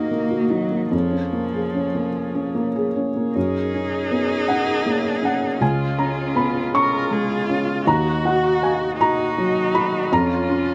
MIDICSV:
0, 0, Header, 1, 5, 480
1, 0, Start_track
1, 0, Key_signature, 6, "major"
1, 0, Tempo, 809717
1, 548, Time_signature, 6, 3, 24, 8
1, 1988, Tempo, 750939
1, 6712, End_track
2, 0, Start_track
2, 0, Title_t, "Harmonium"
2, 0, Program_c, 0, 20
2, 0, Note_on_c, 0, 58, 45
2, 0, Note_on_c, 0, 66, 42
2, 0, Note_on_c, 0, 75, 47
2, 551, Note_off_c, 0, 66, 0
2, 552, Note_off_c, 0, 75, 0
2, 555, Note_on_c, 0, 73, 36
2, 556, Note_on_c, 0, 68, 37
2, 1986, Note_off_c, 0, 73, 0
2, 1987, Note_off_c, 0, 68, 0
2, 1995, Note_on_c, 0, 73, 44
2, 1996, Note_on_c, 0, 68, 43
2, 1996, Note_on_c, 0, 70, 45
2, 1997, Note_off_c, 0, 58, 0
2, 3409, Note_off_c, 0, 70, 0
2, 3409, Note_off_c, 0, 73, 0
2, 3432, Note_on_c, 0, 77, 46
2, 3439, Note_on_c, 0, 56, 45
2, 4852, Note_off_c, 0, 68, 0
2, 4860, Note_on_c, 0, 66, 46
2, 4866, Note_on_c, 0, 75, 46
2, 4875, Note_off_c, 0, 77, 0
2, 4878, Note_off_c, 0, 56, 0
2, 6303, Note_on_c, 0, 65, 50
2, 6307, Note_off_c, 0, 66, 0
2, 6307, Note_on_c, 0, 73, 47
2, 6309, Note_off_c, 0, 75, 0
2, 6712, Note_off_c, 0, 65, 0
2, 6712, Note_off_c, 0, 73, 0
2, 6712, End_track
3, 0, Start_track
3, 0, Title_t, "Viola"
3, 0, Program_c, 1, 41
3, 1990, Note_on_c, 1, 68, 52
3, 3406, Note_off_c, 1, 68, 0
3, 3433, Note_on_c, 1, 65, 47
3, 4141, Note_off_c, 1, 65, 0
3, 4160, Note_on_c, 1, 70, 46
3, 4398, Note_on_c, 1, 68, 46
3, 4408, Note_off_c, 1, 70, 0
3, 4632, Note_off_c, 1, 68, 0
3, 4635, Note_on_c, 1, 65, 44
3, 4870, Note_off_c, 1, 65, 0
3, 4877, Note_on_c, 1, 66, 51
3, 5582, Note_off_c, 1, 66, 0
3, 5595, Note_on_c, 1, 66, 47
3, 6316, Note_on_c, 1, 65, 52
3, 6326, Note_off_c, 1, 66, 0
3, 6712, Note_off_c, 1, 65, 0
3, 6712, End_track
4, 0, Start_track
4, 0, Title_t, "Cello"
4, 0, Program_c, 2, 42
4, 0, Note_on_c, 2, 58, 61
4, 303, Note_on_c, 2, 54, 53
4, 312, Note_off_c, 2, 58, 0
4, 543, Note_off_c, 2, 54, 0
4, 546, Note_on_c, 2, 53, 61
4, 1732, Note_off_c, 2, 53, 0
4, 1989, Note_on_c, 2, 63, 61
4, 3434, Note_on_c, 2, 61, 46
4, 3443, Note_off_c, 2, 63, 0
4, 4160, Note_on_c, 2, 65, 54
4, 4169, Note_off_c, 2, 61, 0
4, 4873, Note_on_c, 2, 66, 58
4, 4882, Note_off_c, 2, 65, 0
4, 5591, Note_off_c, 2, 66, 0
4, 5595, Note_on_c, 2, 63, 61
4, 6321, Note_on_c, 2, 61, 58
4, 6331, Note_off_c, 2, 63, 0
4, 6712, Note_off_c, 2, 61, 0
4, 6712, End_track
5, 0, Start_track
5, 0, Title_t, "Felt piano"
5, 0, Program_c, 3, 0
5, 0, Control_c, 3, 64, 127
5, 0, Note_on_c, 3, 39, 48
5, 0, Note_on_c, 3, 58, 32
5, 0, Note_on_c, 3, 63, 30
5, 0, Note_on_c, 3, 66, 41
5, 68, Note_off_c, 3, 58, 0
5, 68, Note_on_c, 3, 58, 36
5, 137, Note_off_c, 3, 63, 0
5, 181, Note_off_c, 3, 66, 0
5, 181, Note_on_c, 3, 66, 34
5, 257, Note_off_c, 3, 58, 0
5, 297, Note_on_c, 3, 63, 29
5, 376, Note_off_c, 3, 66, 0
5, 419, Note_on_c, 3, 58, 28
5, 495, Note_off_c, 3, 63, 0
5, 524, Note_off_c, 3, 39, 0
5, 540, Note_on_c, 3, 41, 41
5, 545, Note_off_c, 3, 58, 0
5, 561, Control_c, 3, 64, 0
5, 657, Note_on_c, 3, 61, 29
5, 676, Control_c, 3, 64, 127
5, 787, Note_on_c, 3, 58, 31
5, 858, Note_off_c, 3, 61, 0
5, 911, Note_on_c, 3, 68, 34
5, 983, Note_off_c, 3, 58, 0
5, 1036, Note_on_c, 3, 61, 32
5, 1106, Note_off_c, 3, 68, 0
5, 1154, Note_on_c, 3, 58, 29
5, 1228, Note_off_c, 3, 61, 0
5, 1392, Note_on_c, 3, 61, 34
5, 1502, Note_off_c, 3, 58, 0
5, 1510, Note_on_c, 3, 58, 37
5, 1586, Note_off_c, 3, 61, 0
5, 1635, Note_on_c, 3, 68, 37
5, 1706, Note_off_c, 3, 58, 0
5, 1754, Note_on_c, 3, 61, 32
5, 1827, Note_off_c, 3, 68, 0
5, 1872, Note_on_c, 3, 58, 32
5, 1942, Note_off_c, 3, 61, 0
5, 1961, Note_off_c, 3, 41, 0
5, 1988, Note_off_c, 3, 58, 0
5, 1990, Note_on_c, 3, 42, 44
5, 2001, Control_c, 3, 64, 0
5, 2106, Control_c, 3, 64, 127
5, 2235, Note_on_c, 3, 61, 34
5, 2473, Note_on_c, 3, 59, 32
5, 2617, Note_off_c, 3, 61, 0
5, 2710, Note_on_c, 3, 78, 61
5, 2712, Note_off_c, 3, 59, 0
5, 2716, Note_on_c, 3, 61, 33
5, 2952, Note_on_c, 3, 58, 39
5, 3099, Note_off_c, 3, 61, 0
5, 3167, Note_off_c, 3, 78, 0
5, 3183, Note_on_c, 3, 61, 35
5, 3201, Note_on_c, 3, 78, 57
5, 3336, Note_off_c, 3, 58, 0
5, 3406, Note_off_c, 3, 42, 0
5, 3419, Note_off_c, 3, 78, 0
5, 3426, Note_off_c, 3, 61, 0
5, 3427, Note_on_c, 3, 37, 43
5, 3435, Note_on_c, 3, 80, 63
5, 3443, Control_c, 3, 64, 0
5, 3565, Control_c, 3, 64, 127
5, 3655, Note_off_c, 3, 80, 0
5, 3670, Note_on_c, 3, 82, 59
5, 3672, Note_on_c, 3, 61, 32
5, 3895, Note_off_c, 3, 82, 0
5, 3906, Note_on_c, 3, 59, 31
5, 3912, Note_on_c, 3, 83, 57
5, 4059, Note_off_c, 3, 61, 0
5, 4138, Note_off_c, 3, 83, 0
5, 4152, Note_off_c, 3, 59, 0
5, 4152, Note_on_c, 3, 61, 37
5, 4157, Note_on_c, 3, 85, 81
5, 4388, Note_on_c, 3, 56, 42
5, 4537, Note_off_c, 3, 61, 0
5, 4634, Note_on_c, 3, 61, 41
5, 4774, Note_off_c, 3, 56, 0
5, 4846, Note_off_c, 3, 37, 0
5, 4850, Note_off_c, 3, 85, 0
5, 4874, Note_off_c, 3, 61, 0
5, 4874, Note_on_c, 3, 39, 51
5, 4877, Note_on_c, 3, 82, 70
5, 4885, Control_c, 3, 64, 0
5, 4988, Control_c, 3, 64, 127
5, 5100, Note_off_c, 3, 82, 0
5, 5116, Note_on_c, 3, 66, 36
5, 5120, Note_on_c, 3, 78, 57
5, 5341, Note_off_c, 3, 78, 0
5, 5360, Note_on_c, 3, 77, 36
5, 5362, Note_on_c, 3, 80, 64
5, 5500, Note_off_c, 3, 66, 0
5, 5582, Note_off_c, 3, 80, 0
5, 5597, Note_off_c, 3, 77, 0
5, 5601, Note_on_c, 3, 66, 38
5, 5602, Note_on_c, 3, 82, 79
5, 5841, Note_on_c, 3, 54, 43
5, 5982, Note_off_c, 3, 66, 0
5, 6053, Note_off_c, 3, 82, 0
5, 6071, Note_on_c, 3, 66, 39
5, 6075, Note_on_c, 3, 83, 73
5, 6221, Note_off_c, 3, 54, 0
5, 6288, Note_off_c, 3, 39, 0
5, 6297, Note_off_c, 3, 83, 0
5, 6312, Note_off_c, 3, 66, 0
5, 6312, Note_on_c, 3, 41, 58
5, 6318, Note_on_c, 3, 82, 82
5, 6324, Control_c, 3, 64, 0
5, 6414, Control_c, 3, 64, 127
5, 6550, Note_on_c, 3, 61, 40
5, 6712, Note_off_c, 3, 41, 0
5, 6712, Note_off_c, 3, 61, 0
5, 6712, Note_off_c, 3, 82, 0
5, 6712, End_track
0, 0, End_of_file